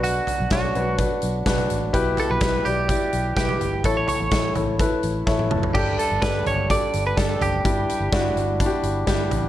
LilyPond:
<<
  \new Staff \with { instrumentName = "Clean electric guitar" } { \time 4/4 \key g \lydian \tempo 4 = 126 fis'4 fis'4 r2 | r8 a'16 b'8. g'4. g'4 | a'16 cis''16 cis''4 r2 r8 | g'8 a'8 b'8 cis''8 d''8. b'16 a'8 g'8~ |
g'4. r2 r8 | }
  \new Staff \with { instrumentName = "Grand piano" } { \time 4/4 \key g \lydian <d' fis' b'>4 <d' fis' cis''>8 <d' fis' b'>8 <d' fis' b'>4 <d' fis' b'>4 | <e' g' b'>4 <e' g' b'>8 <e' g' d''>8 <e' g' d''>4 <e' g' b'>4 | <e' a' cis''>4 <e' a' cis''>8 <e' a' cis''>8 <e' a' b'>4 <e' a' cis''>4 | <d' g' a'>4 <d' g' a'>4 <d' g' a'>4 <d' g' a'>4 |
<d' e' g'>4 <d' e' fis'>4 <d' e' fis' g'>4 <d' e' g'>4 | }
  \new Staff \with { instrumentName = "Grand piano" } { \clef bass \time 4/4 \key g \lydian b,4 r2. | b,4. r2 r8 | a,4. r4. e''8 a''8 | g,4. r2 r8 |
g,4. r2 r8 | }
  \new Staff \with { instrumentName = "Fingered electric bass" } { \clef bass \time 4/4 \key g \lydian b,,8 r16 b,,16 b,,8 b,,8. r16 b,,8 b,,8 a,,8 | b,,8 r16 b,,16 b,,8 b,,8. r16 b,,8 r8 g,,8 | a,,8 r16 a,,16 a,,8 a,,8. r16 a,,8 a,,8 fis,,8 | g,,8 r16 g,,16 r8 g,,8. r16 g,,8 g,,8 fis,,8 |
g,,8 r16 g,,16 r8 g,,8. r16 g,,8 g,,8 a,,8 | }
  \new DrumStaff \with { instrumentName = "Drums" } \drummode { \time 4/4 hh8 <hh tomfh>8 <hh bd sn>8 hh8 <hh bd>8 hh8 <hh bd sn>16 <hh tomfh>16 hh8 | <hh bd>8 <hh tomfh>8 <hh bd sn>8 hh8 <hh bd>8 hh8 <hh bd sn>16 tomfh16 hh8 | <hh bd>8 <hh tomfh>8 <hh bd sn>8 <hh tomfh>8 <hh bd>8 hh8 <bd sn>16 tommh16 toml16 tomfh16 | <cymc bd>8 hh8 <hh bd sn>8 <hh tomfh>8 <hh bd>8 hh8 <hh bd sn>8 <hh tomfh>8 |
<hh bd>8 hh8 <hh bd sn>8 hh8 <hh bd>8 hh8 <hh bd sn>8 <hh tomfh>8 | }
>>